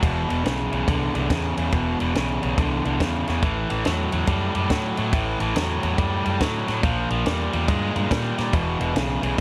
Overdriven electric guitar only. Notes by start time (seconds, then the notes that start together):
0.02 E2 B2
0.29 E2 B2
0.44 E2 C#3
0.72 E2 C#3
0.88 E2 D3
1.14 E2 D3
1.30 E2 C#3
1.57 E2 C#3
1.72 E2 B2
2.00 E2 B2
2.15 E2 C#3
2.42 E2 C#3
2.57 E2 D3
2.85 E2 D3
3.00 E2 C#3
3.28 E2 C#3
3.43 A2 E3
3.70 A2 E3
3.85 A2 F#3
4.12 A2 F#3
4.27 A2 G3
4.55 A2 G3
4.70 A2 F#3
4.98 A2 F#3
5.13 A2 E3
5.40 A2 E3
5.56 A2 F#3
5.83 A2 F#3
5.97 A2 G3
6.25 A2 G3
6.41 A2 F#3
6.68 A2 F#3
6.83 A#2 F3
7.11 A#2 F3
7.26 A#2 G3
7.53 A#2 G3
7.68 A#2 G#3
7.95 A#2 G#3
8.10 A#2 G3
8.38 A#2 G3
8.53 E2 B2
8.80 E2 B2
8.95 E2 C#3
9.22 E2 C#3